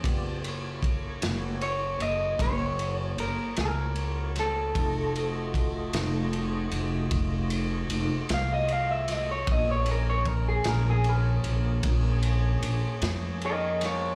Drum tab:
RD |xxxxxxxxxxxx|xxxxxxxxxxxx|xxxxxxxxxxxx|
SD |---o--o--o-o|---o--o--o-o|---o--o--o-o|
BD |o-o---o-----|o-o---o-----|o-o---o-----|